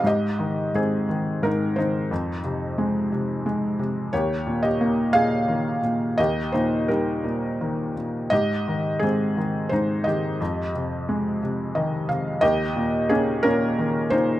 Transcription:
<<
  \new Staff \with { instrumentName = "Felt piano" } { \time 3/4 \key aes \major \tempo 4 = 88 <g' ees''>4 <c' aes'>4 <ees' bes'>8 <ees' c''>8~ | <ees' c''>8 r2 r8 | <g' des''>8. <g' ees''>8. <aes' f''>4 r8 | <g' ees''>8 <ees' c''>8 <ees' bes'>4. r8 |
<g' ees''>4 <c' aes'>4 <ees' c''>8 <g' ees''>8~ | <g' ees''>8 r4. ees''8 f''8 | <g' ees''>4 <des' aes'>8 <des' bes'>4 <ees' c''>8 | }
  \new Staff \with { instrumentName = "Felt piano" } { \clef bass \time 3/4 \key aes \major aes,8 ees8 aes,8 ees8 aes,8 ees8 | f,8 c8 aes8 c8 aes8 c8 | ees,8 bes,8 bes8 bes,8 ees8 bes,8 | ees,8 bes,8 g8 bes,8 ees8 bes,8 |
aes,8 ees8 aes,8 ees8 aes,8 ees8 | f,8 c8 aes8 c8 ees8 c8 | ees,8 bes,8 bes8 bes,8 ees8 bes,8 | }
>>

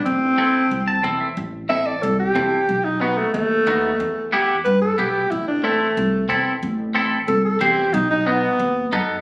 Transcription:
<<
  \new Staff \with { instrumentName = "Alto saxophone" } { \time 4/4 \key a \dorian \tempo 4 = 183 c'2. r4 | r4 e''8 d''8 a'8 g'4. | r8 dis'8 b8 a8 a2~ | a4 r4 b'8 a'8 g'4 |
e'8 d'8 a2 r4 | r2 a'8 a'8 g'4 | dis'8 dis'8 b2 r4 | }
  \new Staff \with { instrumentName = "Clean electric guitar" } { \time 4/4 \key a \dorian r4 <c' e' a'>8 r4 a''8 <c' e' a' e''>8 e''8 | r4 <c' e' a'>8 r4. <c' e' a'>8 r8 | r4 <b dis' fis'>8 r4. <b dis' fis'>8 r8 | r4 <b e' g'>8 r4. <b e' g'>8 r8 |
r4 <c' e' a'>8 r4. <c' e' a'>8 r8 | r4 <c' e' a'>8 r4. <c' e' c''>8 r8 | r4 <b dis' fis'>8 r4. <b dis' a'>8 r8 | }
  \new Staff \with { instrumentName = "Upright bass" } { \clef bass \time 4/4 \key a \dorian a,,2 c,4 e,4 | a,,2 c,4 e,4 | b,,2 dis,4 dis,4 | e,2 g,4 b,,4 |
a,,2 c,4 e,4 | a,,2 c,4 e,4 | b,,2 dis,4 fis,4 | }
>>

